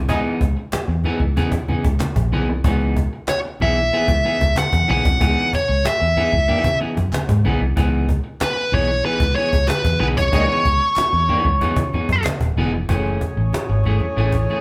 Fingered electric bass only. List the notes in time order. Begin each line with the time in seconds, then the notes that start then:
0.09 C#2
0.41 C#2
0.73 muted fingered electric bass stroke
0.88 E2
1.20 C#2
1.37 C#3
1.68 C#3
1.85 C#2
2.16 A#1
2.33 B1
2.49 C2
2.64 C#2
3.61 B1
4.08 C#2
4.41 C#2
4.73 E2
4.89 B1
5.05 C2
5.21 C#2
5.69 C#2
5.85 muted fingered electric bass stroke
6.02 E2
6.33 C#2
6.49 muted fingered electric bass stroke
6.64 C#3
6.97 F#2
7.29 G#2
7.45 B1
7.61 C2
7.77 C#2
8.72 B1
9.20 C#2
9.53 C#2
9.85 E2
10.00 B1
10.18 C2
10.33 C#2
10.65 C#2
10.97 muted fingered electric bass stroke
11.13 E2
11.45 C#2
11.77 C#3
12.09 F#2
12.40 D#1
12.56 E1
12.73 F1
12.89 F#1
13.37 A1
13.53 muted fingered electric bass stroke
13.69 G#1
14.17 A1